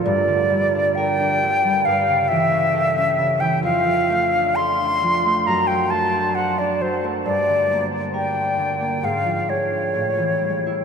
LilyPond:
<<
  \new Staff \with { instrumentName = "Flute" } { \time 4/4 \key d \minor \tempo 4 = 67 d''4 g''4 f''8 e''4~ e''16 g''16 | f''4 c'''4 bes''16 g''16 a''8 fis''16 d''16 c''8 | d''8. r16 g''4 f''8 cis''4. | }
  \new Staff \with { instrumentName = "Harp" } { \clef bass \time 4/4 \key d \minor <g, d'>16 d16 g16 d'16 bes'16 d'16 d16 g16 g,16 cis16 e16 cis'16 a'16 cis'16 cis16 e16 | f,16 f16 a16 d'16 a'16 d'16 f16 a16 fis,16 fis16 a16 d'16 c''16 d'16 fis16 a16 | g,16 d16 bes16 d'16 bes'16 d'16 d16 bes16 aes,16 f16 aes16 d'16 a,16 e16 g16 e'16 | }
>>